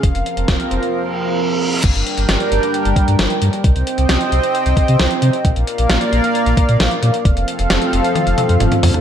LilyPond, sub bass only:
\new Staff \with { instrumentName = "Sub bass" } { \clef bass \time 4/4 \key g \minor \tempo 4 = 133 f,,16 f,,16 r16 f,,16 f,,16 r16 f,,16 r2 r16 | g,,16 g,,16 r16 g,,16 g,,16 r16 g,,16 r8 g,,16 r16 g,16 g,,16 r16 g,16 r16 | c,16 c,16 r16 c,16 c,16 r16 c,16 r8 c,16 r16 c16 c,16 r16 c16 r16 | bes,,16 bes,,16 r16 bes,,16 bes,,16 r16 bes,,16 r8 bes,,16 r16 bes,16 bes,,16 r16 bes,16 r16 |
f,,16 f,,16 r16 f,,16 f,,16 r16 f,,16 r8 f,,16 r16 f,16 f,,16 r16 f,16 r16 | }